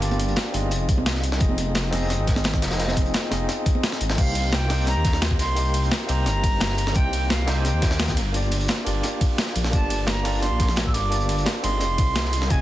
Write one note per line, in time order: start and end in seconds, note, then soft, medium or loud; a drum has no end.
0.00 0.35 G1 medium
0.00 0.73 A#3 loud
0.00 0.73 D4 medium
0.00 0.02 F4 medium
0.00 0.52 F4 medium
0.00 0.03 G4 medium
0.00 0.53 G4 medium
0.00 0.04 D5 loud
0.00 closed hi-hat medium
0.04 0.53 D5 medium
0.11 closed hi-hat soft
0.11 high conga medium
0.19 closed hi-hat medium
0.19 closed hi-hat loud
0.28 closed hi-hat soft
0.36 snare loud
0.36 closed hi-hat medium
0.52 0.73 G1 loud
0.52 1.38 C4 medium
0.52 1.38 D#4 medium
0.52 1.39 F4 medium
0.52 1.39 G#4 medium
0.52 closed hi-hat medium
0.52 open hi-hat medium
0.52 high conga medium
0.56 1.40 D#5 medium
0.71 0.87 F1 loud
0.71 closed hi-hat medium
0.89 1.39 C2 medium
0.89 kick loud
0.89 closed hi-hat medium
0.98 high conga loud
1.06 snare loud
1.06 closed hi-hat medium
1.15 snare medium
1.24 closed hi-hat medium
1.32 snare soft
1.39 1.91 F1 loud
1.39 1.89 C4 medium
1.39 1.90 D#4 medium
1.39 1.91 F4 medium
1.39 1.91 G#4 medium
1.39 1.92 D#5 medium
1.39 kick loud
1.39 closed hi-hat medium
1.49 high conga medium
1.58 closed hi-hat medium
1.58 closed hi-hat loud
1.75 snare loud
1.75 closed hi-hat loud
1.75 closed hi-hat medium
1.91 2.17 F1 loud
1.91 2.76 C4 medium
1.91 2.77 D#4 medium
1.91 2.77 F4 medium
1.91 2.78 G#4 medium
1.91 snare soft
1.91 closed hi-hat medium
1.91 open hi-hat medium
1.91 high conga medium
1.95 2.78 D#5 loud
2.10 snare soft
2.10 closed hi-hat medium
2.10 closed hi-hat loud
2.19 2.64 G#1 medium
2.27 kick loud
2.27 snare soft
2.27 closed hi-hat medium
2.27 closed hi-hat loud
2.36 snare soft
2.36 closed hi-hat soft
2.36 high conga medium
2.44 snare loud
2.44 closed hi-hat medium
2.54 kick medium
2.54 snare soft
2.62 3.13 F1 medium
2.62 snare loud
2.62 closed hi-hat medium
2.62 closed hi-hat loud
2.71 snare loud
2.71 closed hi-hat medium
2.77 3.28 C4 medium
2.77 3.29 D#4 medium
2.77 3.29 F4 medium
2.77 3.30 G#4 medium
2.77 snare loud
2.77 closed hi-hat medium
2.82 3.30 D#5 medium
2.88 snare loud
2.88 closed hi-hat medium
2.88 high conga medium
2.97 kick medium
2.97 closed hi-hat medium
2.97 closed hi-hat loud
3.06 closed hi-hat soft
3.14 snare loud
3.14 closed hi-hat loud
3.14 closed hi-hat medium
3.29 3.47 F1 loud
3.29 4.15 C4 medium
3.29 4.15 D#4 medium
3.29 4.16 F4 medium
3.29 4.17 G#4 medium
3.29 snare medium
3.29 closed hi-hat medium
3.29 open hi-hat medium
3.29 high conga medium
3.33 4.17 D#5 medium
3.49 snare soft
3.49 closed hi-hat loud
3.49 closed hi-hat medium
3.66 kick loud
3.66 closed hi-hat medium
3.66 closed hi-hat loud
3.75 high conga medium
3.83 snare loud
3.83 closed hi-hat medium
3.92 snare medium
4.01 4.16 G#1 medium
4.01 closed hi-hat loud
4.01 closed hi-hat medium
4.09 snare loud
4.09 snare soft
4.09 closed hi-hat medium
4.16 4.69 C2 loud
4.16 4.67 A#3 medium
4.16 4.68 C4 medium
4.16 4.68 D#4 medium
4.16 4.68 G4 medium
4.16 4.69 C5 medium
4.16 4.55 F5 medium
4.16 kick loud
4.16 closed hi-hat medium
4.16 crash loud
4.35 closed hi-hat loud
4.35 closed hi-hat medium
4.35 ride medium
4.53 4.87 G5 loud
4.53 snare loud
4.53 closed hi-hat medium
4.68 4.95 C2 loud
4.68 5.54 A#3 medium
4.68 5.54 C4 medium
4.68 5.55 D#4 medium
4.68 5.55 G4 medium
4.68 snare medium
4.68 closed hi-hat loud
4.68 open hi-hat medium
4.68 ride medium
4.72 5.56 C5 loud
4.87 5.20 A#5 loud
4.87 snare soft
4.87 closed hi-hat medium
4.87 closed hi-hat loud
4.96 5.41 D#2 medium
5.05 kick loud
5.05 snare soft
5.05 closed hi-hat loud
5.05 closed hi-hat medium
5.05 ride medium
5.13 snare medium
5.13 closed hi-hat soft
5.22 snare loud
5.22 closed hi-hat medium
5.31 kick medium
5.39 5.90 C2 medium
5.39 5.88 C6 loud
5.39 snare soft
5.39 closed hi-hat medium
5.39 ride medium
5.55 6.06 A#3 medium
5.55 6.06 C4 medium
5.55 6.07 D#4 medium
5.55 6.07 G4 medium
5.55 6.08 C5 medium
5.55 closed hi-hat medium
5.65 closed hi-hat soft
5.74 closed hi-hat medium
5.74 closed hi-hat loud
5.74 ride medium
5.84 closed hi-hat soft
5.91 snare loud
5.91 closed hi-hat loud
5.91 closed hi-hat medium
6.07 6.28 C2 loud
6.07 6.93 A#3 medium
6.07 6.93 C4 medium
6.07 6.93 D#4 medium
6.07 6.94 G4 medium
6.07 6.94 C5 medium
6.07 6.98 A#5 loud
6.07 closed hi-hat medium
6.07 open hi-hat medium
6.07 ride medium
6.26 6.42 G1 loud
6.26 snare soft
6.26 closed hi-hat medium
6.44 6.94 G1 medium
6.44 kick loud
6.44 closed hi-hat loud
6.44 closed hi-hat medium
6.44 ride medium
6.60 snare loud
6.60 closed hi-hat medium
6.70 snare medium
6.78 closed hi-hat medium
6.78 ride medium
6.87 snare soft
6.87 snare medium
6.94 7.46 C2 loud
6.94 7.45 A#3 medium
6.94 7.45 C4 medium
6.94 7.46 D#4 medium
6.94 7.46 G4 medium
6.94 7.47 C5 medium
6.94 7.32 G5 loud
6.94 kick loud
6.94 closed hi-hat medium
7.13 closed hi-hat medium
7.13 ride medium
7.30 7.59 F5 loud
7.30 snare loud
7.30 closed hi-hat medium
7.46 7.72 C2 loud
7.46 8.15 A#3 medium
7.46 8.16 C4 medium
7.46 8.16 D#4 medium
7.46 8.17 G4 medium
7.46 snare loud
7.46 snare medium
7.46 closed hi-hat medium
7.46 ride medium
7.50 8.17 C5 loud
7.58 7.66 G#5 medium
7.65 8.17 G5 medium
7.65 snare soft
7.65 closed hi-hat medium
7.74 8.18 D#2 medium
7.82 kick loud
7.82 snare loud
7.82 closed hi-hat medium
7.82 ride medium
7.90 snare loud
7.90 snare medium
7.90 closed hi-hat medium
7.99 snare loud
7.99 closed hi-hat medium
8.08 kick medium
8.08 snare loud
8.08 closed hi-hat medium
8.17 8.68 G1 medium
8.17 snare soft
8.17 closed hi-hat medium
8.17 ride medium
8.32 8.83 A#3 medium
8.32 8.84 D4 medium
8.32 8.84 F4 medium
8.32 8.85 G4 medium
8.32 closed hi-hat medium
8.36 8.85 D5 medium
8.42 closed hi-hat soft
8.51 closed hi-hat medium
8.51 ride medium
8.61 closed hi-hat soft
8.68 snare loud
8.68 closed hi-hat medium
8.84 9.02 G1 loud
8.84 9.70 A#3 medium
8.84 9.70 D4 medium
8.84 9.71 F4 medium
8.84 9.71 G4 medium
8.84 closed hi-hat medium
8.84 open hi-hat medium
8.84 ride medium
8.88 9.72 D5 medium
9.03 snare soft
9.03 closed hi-hat loud
9.03 closed hi-hat medium
9.21 kick loud
9.21 closed hi-hat medium
9.21 ride medium
9.38 snare loud
9.38 closed hi-hat medium
9.46 snare medium
9.56 9.71 A#1 loud
9.56 closed hi-hat medium
9.56 ride medium
9.64 snare soft
9.71 10.24 G1 loud
9.71 10.22 A#3 medium
9.71 10.22 D4 medium
9.71 10.23 F4 medium
9.71 10.24 G4 medium
9.71 10.05 A5 loud
9.71 kick loud
9.71 closed hi-hat medium
9.75 10.24 D5 medium
9.90 closed hi-hat medium
9.90 ride medium
10.07 10.40 A#5 loud
10.07 snare loud
10.07 closed hi-hat medium
10.23 10.50 G1 loud
10.23 11.08 A#3 medium
10.23 11.09 D4 medium
10.23 11.10 F4 medium
10.23 11.10 G4 medium
10.23 11.11 D5 loud
10.23 snare soft
10.23 closed hi-hat medium
10.23 open hi-hat medium
10.23 ride medium
10.42 10.75 C6 loud
10.42 snare soft
10.42 closed hi-hat medium
10.42 closed hi-hat loud
10.51 10.96 A#1 medium
10.60 kick loud
10.60 snare soft
10.60 closed hi-hat medium
10.60 ride medium
10.69 snare soft
10.69 closed hi-hat soft
10.76 snare loud
10.76 closed hi-hat loud
10.76 closed hi-hat medium
10.86 10.95 E6 medium
10.86 kick medium
10.94 11.45 G1 medium
10.94 11.46 D6 loud
10.94 snare soft
10.94 closed hi-hat medium
10.94 ride medium
11.09 11.61 A#3 medium
11.09 11.61 D4 medium
11.09 11.62 F4 medium
11.09 11.62 G4 medium
11.09 11.62 D5 medium
11.09 closed hi-hat medium
11.20 closed hi-hat soft
11.29 closed hi-hat medium
11.29 ride medium
11.38 closed hi-hat soft
11.46 snare loud
11.46 closed hi-hat medium
11.61 11.83 G1 loud
11.61 12.47 C4 medium
11.61 12.48 D#4 medium
11.61 12.48 F4 medium
11.61 12.49 G#4 medium
11.61 12.52 C6 loud
11.61 closed hi-hat medium
11.61 open hi-hat medium
11.61 ride medium
11.65 12.49 D#5 loud
11.81 11.97 F1 medium
11.81 snare soft
11.81 closed hi-hat loud
11.81 closed hi-hat medium
11.98 12.49 C2 medium
11.98 kick loud
11.98 closed hi-hat loud
11.98 closed hi-hat medium
11.98 ride medium
12.16 snare loud
12.16 closed hi-hat medium
12.25 snare medium
12.33 closed hi-hat medium
12.33 ride medium
12.41 snare soft
12.49 12.62 F1 loud
12.49 12.62 C4 medium
12.49 12.62 D#4 medium
12.49 12.62 F4 medium
12.49 12.62 G#4 medium
12.49 12.62 G#5 loud
12.49 kick loud
12.49 closed hi-hat medium
12.53 12.62 D#5 medium